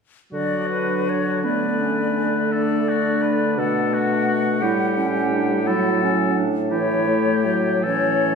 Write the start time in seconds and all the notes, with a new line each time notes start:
0.32 D3 F#3 D4 F#4 D5
0.69 B4
1.09 C#5
1.44 A3 B3 B4 D5
1.82 C#4
2.18 D4
2.52 A4 D5
2.89 F#4
3.22 B4
3.58 B2 A3 A4 F#5
3.94 F#4
4.27 F#4
4.61 A2 G3 E4 G4
4.97 C#4
5.33 D4
5.66 F#3 E4 A4
6.03 C#4
6.36 D4
6.71 E3 E4 G4 C#5
7.08 A3
7.46 F#3
7.83 E3 C#4 A4 C#5